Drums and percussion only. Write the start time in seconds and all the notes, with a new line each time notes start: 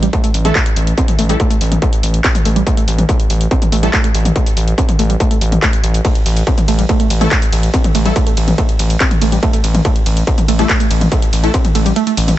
0.03 closed hi-hat
0.13 kick, closed hi-hat
0.24 closed hi-hat
0.34 open hi-hat
0.45 closed hi-hat, mid tom
0.55 kick, clap, closed hi-hat
0.66 closed hi-hat
0.76 open hi-hat
0.87 closed hi-hat
0.98 kick, closed hi-hat
1.08 closed hi-hat, mid tom
1.19 open hi-hat
1.29 closed hi-hat
1.40 kick, closed hi-hat
1.50 closed hi-hat
1.61 open hi-hat
1.72 closed hi-hat, mid tom
1.82 kick, closed hi-hat
1.93 closed hi-hat
2.03 open hi-hat
2.14 closed hi-hat
2.24 kick, clap, closed hi-hat
2.35 closed hi-hat, mid tom
2.45 open hi-hat
2.56 closed hi-hat
2.67 kick, closed hi-hat
2.77 closed hi-hat
2.88 open hi-hat
2.98 closed hi-hat, mid tom
3.09 kick, closed hi-hat
3.20 closed hi-hat
3.30 open hi-hat
3.41 closed hi-hat
3.51 kick, closed hi-hat
3.62 closed hi-hat, mid tom
3.72 open hi-hat
3.83 closed hi-hat
3.93 kick, clap, closed hi-hat
4.04 closed hi-hat
4.15 open hi-hat
4.25 closed hi-hat, mid tom
4.36 kick, closed hi-hat
4.46 closed hi-hat
4.57 open hi-hat
4.68 closed hi-hat
4.78 kick, closed hi-hat
4.89 closed hi-hat, mid tom
4.99 open hi-hat
5.10 closed hi-hat
5.20 kick, closed hi-hat
5.31 closed hi-hat
5.41 open hi-hat
5.52 closed hi-hat, mid tom
5.62 kick, clap, closed hi-hat
5.73 closed hi-hat
5.84 open hi-hat
5.94 closed hi-hat
6.05 kick, closed hi-hat, ride
6.15 closed hi-hat
6.26 open hi-hat, ride
6.36 closed hi-hat
6.47 kick, closed hi-hat, ride
6.58 closed hi-hat, mid tom
6.68 open hi-hat, ride
6.79 closed hi-hat
6.89 kick, closed hi-hat, ride
7.00 closed hi-hat
7.10 open hi-hat, ride
7.21 closed hi-hat, mid tom
7.31 kick, clap, closed hi-hat, ride
7.42 closed hi-hat
7.53 open hi-hat, ride
7.63 closed hi-hat
7.74 kick, closed hi-hat, ride
7.84 closed hi-hat, mid tom
7.95 open hi-hat, ride
8.05 closed hi-hat
8.16 kick, closed hi-hat, ride
8.27 closed hi-hat
8.37 open hi-hat, ride
8.48 closed hi-hat, mid tom
8.58 kick, closed hi-hat, ride
8.69 closed hi-hat
8.79 open hi-hat, ride
8.90 closed hi-hat
9.00 kick, clap, closed hi-hat, ride
9.11 closed hi-hat, mid tom
9.22 open hi-hat, ride
9.32 closed hi-hat
9.43 kick, closed hi-hat, ride
9.53 closed hi-hat
9.64 open hi-hat, ride
9.75 closed hi-hat, mid tom
9.85 kick, closed hi-hat, ride
9.96 closed hi-hat
10.06 open hi-hat, ride
10.17 closed hi-hat
10.27 kick, closed hi-hat, ride
10.38 closed hi-hat, mid tom
10.48 open hi-hat, ride
10.59 closed hi-hat
10.69 kick, clap, closed hi-hat, ride
10.80 closed hi-hat
10.91 open hi-hat, ride
11.01 closed hi-hat, mid tom
11.12 kick, closed hi-hat, ride
11.22 closed hi-hat
11.33 open hi-hat, ride
11.44 closed hi-hat
11.54 kick, closed hi-hat, ride
11.65 closed hi-hat, mid tom
11.75 open hi-hat, ride
11.86 closed hi-hat
11.96 closed hi-hat, ride
12.07 closed hi-hat
12.17 open hi-hat, ride
12.28 closed hi-hat, mid tom